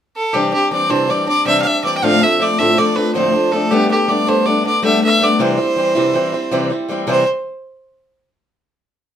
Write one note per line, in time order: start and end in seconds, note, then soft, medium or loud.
0.16 0.35 A4 medium
0.33 0.52 C3 medium
0.33 0.52 E3 medium
0.33 0.53 G3 medium
0.33 0.53 C4 medium
0.33 0.51 D4 medium
0.33 0.52 G4 medium
0.52 0.71 G3 soft
0.52 0.72 C4 soft
0.52 0.71 D4 soft
0.52 0.70 G4 medium
0.71 0.90 E3 soft
0.71 0.90 G3 soft
0.71 0.89 C4 soft
0.71 0.88 D4 medium
0.71 0.92 D5 medium
0.89 1.09 C3 medium
0.89 1.06 E3 medium
0.89 1.08 G3 medium
0.89 1.09 C4 medium
0.89 1.08 D4 medium
0.89 1.12 C5 medium
1.07 1.27 E3 medium
1.07 1.28 G3 medium
1.07 1.27 C4 medium
1.07 1.25 D4 medium
1.07 1.28 D5 medium
1.27 1.45 G3 soft
1.27 1.46 C4 soft
1.27 1.46 D4 soft
1.27 1.45 D5 medium
1.45 1.64 C3 medium
1.45 1.65 E3 medium
1.45 1.65 G3 medium
1.45 1.65 C4 medium
1.45 1.63 D4 medium
1.45 1.59 E5 medium
1.62 1.83 D4 soft
1.62 1.68 F5 medium
1.66 1.83 G3 soft
1.66 1.84 C4 soft
1.66 1.84 E5 medium
1.83 2.02 E3 soft
1.83 2.03 G3 medium
1.83 2.02 C4 medium
1.83 2.03 D4 medium
1.83 1.97 D5 medium
1.97 2.05 G5 medium
2.02 2.21 D2 medium
2.02 2.21 A2 medium
2.02 2.21 F3 medium
2.02 2.22 A3 medium
2.02 2.21 C4 medium
2.02 2.20 D4 medium
2.02 2.25 F5 loud
2.21 2.38 F3 soft
2.21 2.40 A3 soft
2.21 2.41 C4 soft
2.21 2.40 D4 soft
2.21 2.43 E5 medium
2.39 2.58 F3 medium
2.39 2.59 A3 soft
2.39 2.58 C4 soft
2.39 2.58 D4 medium
2.39 2.60 D5 medium
2.59 2.79 D2 medium
2.59 2.78 A2 medium
2.59 2.75 F3 medium
2.59 2.77 A3 medium
2.59 2.78 C4 medium
2.59 2.78 D4 medium
2.59 2.80 E5 medium
2.77 2.96 F3 medium
2.77 2.97 A3 medium
2.77 2.95 C4 medium
2.77 2.94 D4 medium
2.77 2.97 D5 medium
2.95 3.14 F3 soft
2.95 3.15 A3 soft
2.95 3.15 C4 soft
2.95 3.15 D4 soft
2.95 3.14 B4 medium
3.14 3.33 D2 medium
3.14 3.34 A2 medium
3.14 3.34 F3 medium
3.14 3.34 A3 medium
3.14 3.33 C4 medium
3.14 3.32 D4 medium
3.14 3.53 C5 medium
3.33 3.51 F3 soft
3.33 3.52 A3 soft
3.33 3.53 C4 soft
3.33 3.52 D4 soft
3.52 3.71 F3 soft
3.52 3.70 A3 medium
3.52 3.72 C4 medium
3.52 3.72 D4 medium
3.52 3.72 A4 medium
3.71 3.90 G3 medium
3.71 3.90 A3 medium
3.71 3.90 B3 medium
3.71 3.88 D4 medium
3.71 3.90 G4 loud
3.89 4.08 A3 soft
3.89 4.09 B3 soft
3.89 4.08 D4 soft
3.89 4.10 G4 medium
4.08 4.27 G3 soft
4.08 4.27 A3 soft
4.08 4.26 B3 medium
4.08 4.25 D4 medium
4.08 4.30 D5 medium
4.27 4.44 G3 medium
4.27 4.46 A3 medium
4.27 4.46 B3 medium
4.27 4.46 D4 medium
4.27 4.47 C5 medium
4.45 4.65 G3 medium
4.45 4.65 A3 medium
4.45 4.64 B3 medium
4.45 4.63 D4 medium
4.45 4.65 D5 medium
4.64 4.82 A3 soft
4.64 4.83 B3 soft
4.64 4.83 D4 soft
4.64 4.83 D5 medium
4.82 5.02 G3 medium
4.82 5.02 A3 medium
4.82 5.02 B3 medium
4.82 5.00 D4 medium
4.82 5.02 E5 medium
5.02 5.20 A3 soft
5.02 5.21 B3 soft
5.02 5.21 D4 soft
5.02 5.25 E5 medium
5.20 5.39 G3 medium
5.20 5.40 A3 medium
5.20 5.40 B3 medium
5.20 5.41 D4 medium
5.20 5.41 D5 medium
5.39 5.58 C3 medium
5.39 5.59 E3 medium
5.39 5.59 G3 medium
5.39 5.58 C4 medium
5.39 5.56 E4 medium
5.39 6.68 C5 medium
5.58 5.76 G3 soft
5.58 5.77 C4 soft
5.58 5.77 E4 soft
5.76 5.96 E3 soft
5.76 5.95 G3 medium
5.76 5.95 C4 medium
5.76 5.94 E4 medium
5.95 6.16 C3 medium
5.95 6.12 E3 medium
5.95 6.14 G3 medium
5.95 6.14 C4 medium
5.95 6.14 E4 medium
6.14 6.33 E3 medium
6.14 6.34 G3 medium
6.14 6.33 C4 medium
6.14 6.31 E4 medium
6.32 6.51 G3 soft
6.32 6.52 C4 soft
6.32 6.52 E4 medium
6.51 6.71 C3 medium
6.51 6.71 E3 medium
6.51 6.71 G3 medium
6.51 6.70 C4 medium
6.51 6.69 E4 medium
6.70 6.88 G3 soft
6.70 6.89 C4 soft
6.70 6.89 E4 soft
6.88 7.06 E3 medium
6.88 7.07 G3 medium
6.88 7.07 C4 medium
6.88 7.08 E4 medium
7.07 7.23 C3 medium
7.07 7.23 E3 medium
7.07 7.24 G3 medium
7.07 7.24 C4 medium
7.07 7.24 E4 medium
7.07 7.27 C5 medium